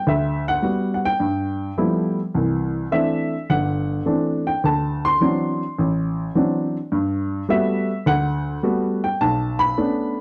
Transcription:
0.07 D2 E5
0.48 F#5
0.62 G3 B3 F#4
0.94 F#5
1.05 G5
1.20 G2
1.77 F3 G3 A3 B3 E4
2.34 C2 E3
2.92 E3 A3 C4 D4 E5
3.50 G1 F#5
4.06 E3 A3 C4 D4
4.47 G5
4.64 D2 A5
5.05 C6
5.20 E3 F#3 C4 D4
5.79 A1
6.35 E3 F#3 C4 D4
6.92 G2
7.49 G3 A3 B3 F#4 E5
8.06 D2 F#5
8.63 G3 A3 B3 F#4
9.04 G5
9.21 B1 A5
9.59 B5
9.77 A3 B3 C#4 D4

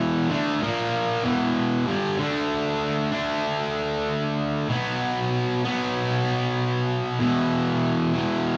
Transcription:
Already playing: E2 B2 E3
0.29 D3 A3 D4
0.61 A#2 F3 A#3
1.24 E2 B2 E3
1.87 G2 D3 G3
2.19 D3 A3
2.23 D4
3.11 D3 A3 D4
4.69 B2 F#3
4.73 B3
5.65 B2 F#3 B3
7.19 E2 B2 E3
8.14 E2 B2 E3

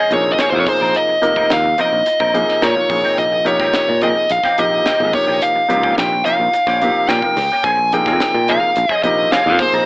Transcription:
Already playing: D#5
0.00 F3 C4 C#4 G#4
0.11 A#1 C3 F3 A#3 D#4 G#4 C#5, muted clean electric guitar stroke, closed hi-hat
0.31 D#5
0.38 F3 C4 C#4 G#4 C#5, muted fingered electric bass stroke, snare, closed hi-hat
0.50 F2 C3 F3 A#3 D#4 F4 C5, muted clean electric guitar stroke
0.60 C#5
0.66 C3 F3 A#3 D#4 G#4 C5, muted fingered electric bass stroke, muted clean electric guitar stroke, kick, open hi-hat
0.81 A#1 C4 D#4 A#4
0.95 D#5, closed hi-hat
1.09 muted fingered electric bass stroke, muted clean electric guitar stroke
1.22 F1 C3 F3 A#3 D#4 A#4, muted clean electric guitar stroke, closed hi-hat
1.36 F3 C4 D#4 A#4, kick
1.50 D#2 F5, snare, closed hi-hat
1.65 muted clean electric guitar stroke
1.78 C3 F3 A#3 C4 D#4 F4 A#4 D#5, closed hi-hat
1.93 A#1, muted clean electric guitar stroke
2.06 D#4 F4, muted clean electric guitar stroke, closed hi-hat
2.20 A#1 F3 C4 D#4 A#4, kick
2.34 C3 F3 A#3 D#4 G#4, muted clean electric guitar stroke, closed hi-hat
2.49 muted fingered electric bass stroke, snare
2.62 A#2 F3 C4 D#4 A#4 C#5, snare, closed hi-hat
2.76 C3 F3 A#3 D#4 F4, muted clean electric guitar stroke
2.90 A#1 C3 F3 A#3 D#4 G#4, muted clean electric guitar stroke, kick, open hi-hat
3.04 C4 D#4 G4
3.18 A#1 D#5, closed hi-hat
3.32 muted clean electric guitar stroke
3.45 C3 F3 A#3 D#4 G4 C#5, muted clean electric guitar stroke, closed hi-hat
3.60 G#1 F3 C4 D#4 G4, kick, snare
3.73 muted fingered electric bass stroke, snare, closed hi-hat
3.88 A#2, muted clean electric guitar stroke
4.01 C3 F3 A#3 C4 D#4 G4 G#4 D#5, closed hi-hat
4.16 muted clean electric guitar stroke, muted fingered electric bass stroke
4.29 A#1 D#4 G#4 F5, muted clean electric guitar stroke, closed hi-hat
4.44 F3 C4 D#4 G4, kick, snare
4.58 A#1 C3 F3 A#3 D#4 G4 D#5, muted clean electric guitar stroke, closed hi-hat
4.86 F3 C4 D#4 G4, muted fingered electric bass stroke, snare, closed hi-hat
5.00 G#1 C3 F3 A#3 D#4 G#4, muted clean electric guitar stroke
5.13 C3 F3 A#3 D#4 G4 C#5, muted fingered electric bass stroke, muted clean electric guitar stroke, kick, open hi-hat
5.27 A#1 A#3 C#4 G4
5.42 F5, closed hi-hat
5.55 muted clean electric guitar stroke, muted fingered electric bass stroke
5.68 C#2 C3 F3 A#3 D#4 G4, muted clean electric guitar stroke, closed hi-hat
5.83 F3 A#3 C#4 G4, kick
5.98 A#1 G5, snare, closed hi-hat
6.12 muted clean electric guitar stroke
6.25 C3 F3 A#3 C#4 D#4 F4 G4 F5, closed hi-hat
6.40 A#1, muted clean electric guitar stroke
6.53 D#4 F4, muted fingered electric bass stroke, muted clean electric guitar stroke, closed hi-hat
6.67 A#1 F3 A#3 C#4 G4, kick, snare
6.82 C3 F3 A#3 D#4 G4, muted clean electric guitar stroke, closed hi-hat
6.95 muted fingered electric bass stroke
7.08 A#2 F3 A#3 C#4 G4 G5, snare, closed hi-hat
7.22 C3 F3 A#3 D#4 A#4, muted clean electric guitar stroke, kick
7.37 C#2 D#4 G4, muted clean electric guitar stroke, snare, open hi-hat
7.52 A#3 C#4 G4
7.64 A#1 F3 C4 C#4 G#4 G#5, kick, closed hi-hat
7.80 muted clean electric guitar stroke
7.92 C3 F3 A#3 D#4 G#4 G5, muted clean electric guitar stroke, closed hi-hat
8.06 F2 F3 C4 C#4 G#4, kick, snare
8.20 muted fingered electric bass stroke, snare, closed hi-hat
8.34 A#2, muted clean electric guitar stroke
8.48 C3 F3 A#3 C4 C#4 D#4 G#4 F5, closed hi-hat
8.62 muted clean electric guitar stroke, muted fingered electric bass stroke
8.76 A#1, muted clean electric guitar stroke, closed hi-hat
8.89 F3 C4 C#4 G#4, kick
9.03 A#1 C3 F3 A#3 D#4 G4 D#5, muted clean electric guitar stroke, closed hi-hat
9.32 F3 C4 C#4 G#4 F5, muted fingered electric bass stroke, snare, closed hi-hat
9.46 F2 C3 F3 A#3 D#4 F4, muted clean electric guitar stroke
9.59 C3 F3 A#3 D#4 G#4 C5, muted fingered electric bass stroke, muted clean electric guitar stroke, kick, open hi-hat
9.74 A#1 C4 D#4 A#4

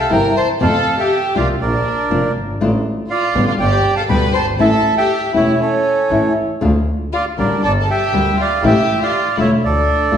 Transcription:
0.00 A4 F5 A5
0.10 G1 C3 E3 G3 C4 E4 A#4 G5 A#5
0.37 C5 A5 C6
0.60 F2 C3 F3 A3 C4 F4 A4 F5 A5
0.99 G4 E5 G5
1.35 C2 F3 A#3 D4 F4 D5 F5
1.61 A#1 D4 A#4 D5
2.11 F1 F3 A#3 D4 F4
2.36 G1
2.60 A1 D3 A3 D4 F4
3.10 F4 D5 F5
3.35 A1 B2 D3 G3 B3 G4
3.47 F4 D5 F5
3.59 G1 G4 D5 G5
3.96 A4 F5 A5
4.09 D2 B2 D3 G3 B3 G4 B4 G5 B5
4.34 G1 C5 A5 C6
4.59 A1 E3 A3 C#4 E4 A4 E5 A5
4.97 G4 E5 G5
5.33 E1 E3 A3 C#4 E4 C#5 E5
5.61 C#4 A4 C#5
6.10 A1 E3 A3 C#4 E4
6.61 D2 D3 A3 D4 F4
7.13 F4 D5 F5
7.38 A1 D3 G3 A#3 D4 G4 A#4 D5
7.63 G1 A4 D5 A5
7.81 A4 A5
7.89 G4 E5 G5
8.13 D2 D3 G3 A#3 D4 G4
8.38 F4 D5 F5
8.63 A1 E3 A3 C#4 E4 G4 E5 G5
9.01 F4 D5 F5
9.36 E1 D3 A3 D4 E4 F4 E5
9.41 C#5
9.63 D2 D4 A4 D5
10.11 A1 D3 A3 D4 F4

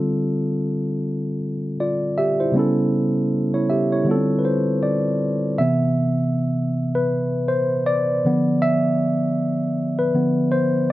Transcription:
Already playing: D3 G3 C4 F4 A4
1.80 F4 D5
2.18 G4 E5
2.40 E4 C5
2.52 C#3 G3 B3
2.56 C#4 E4 A4
3.54 E4 C#5
3.70 G4 E5
3.92 E4 C#5
4.05 D3 G3 B3
4.09 F4 A4
4.14 C4
4.39 B4
4.45 C5
4.83 D5
5.58 C3 E3 B3 E5
6.95 B4
7.48 C5
7.86 D5
8.25 D3 F3 B3
8.62 E5
9.99 B4
10.14 D3 F3 B3
10.52 C5

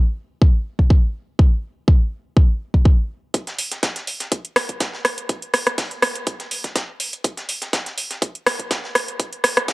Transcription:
0.42 kick
0.79 kick
0.90 kick
1.39 kick
1.88 kick
2.37 kick
2.74 kick
2.85 kick
3.34 kick, closed hi-hat
3.47 snare, closed hi-hat
3.59 closed hi-hat, open hi-hat
3.71 snare, closed hi-hat
3.83 kick, snare, closed hi-hat
3.96 snare, closed hi-hat
4.07 closed hi-hat, open hi-hat
4.20 snare, closed hi-hat
4.32 kick, closed hi-hat
4.45 closed hi-hat
4.56 cross-stick, snare, closed hi-hat, open hi-hat
4.69 kick, closed hi-hat
4.80 kick, snare, closed hi-hat
4.94 snare
5.05 cross-stick, closed hi-hat, open hi-hat
5.18 closed hi-hat
5.29 kick, closed hi-hat
5.42 closed hi-hat
5.54 cross-stick, closed hi-hat, open hi-hat
5.67 cross-stick, closed hi-hat
5.78 kick, snare, closed hi-hat, open hi-hat
5.91 closed hi-hat
6.02 cross-stick, closed hi-hat, open hi-hat
6.15 closed hi-hat
6.27 kick, closed hi-hat
6.40 snare, closed hi-hat
6.51 closed hi-hat, open hi-hat
6.64 kick, snare, closed hi-hat
6.76 kick, snare, closed hi-hat
7.00 closed hi-hat, open hi-hat
7.13 closed hi-hat
7.24 kick, closed hi-hat
7.37 snare, closed hi-hat
7.49 closed hi-hat, open hi-hat
7.62 snare, closed hi-hat
7.73 kick, snare, closed hi-hat
7.86 snare, closed hi-hat
7.98 closed hi-hat, open hi-hat
8.11 snare, closed hi-hat
8.22 kick, closed hi-hat
8.35 closed hi-hat
8.46 cross-stick, snare, closed hi-hat, open hi-hat
8.59 kick, closed hi-hat
8.71 kick, snare, closed hi-hat
8.84 snare
8.95 cross-stick, closed hi-hat, open hi-hat
9.08 closed hi-hat
9.20 kick, closed hi-hat
9.33 closed hi-hat
9.44 cross-stick, closed hi-hat, open hi-hat
9.57 cross-stick, closed hi-hat
9.68 kick, snare, closed hi-hat, open hi-hat

